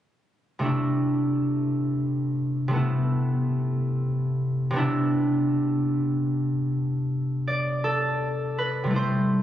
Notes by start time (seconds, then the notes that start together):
0.59 C3 A3 D4
0.65 E4
2.68 C3 A3
2.73 B3 E4
4.71 C3 B3
4.76 D4 E4
7.47 D5
7.84 A4
8.58 B4
8.84 C3 G3
8.90 A3 E4
8.96 C5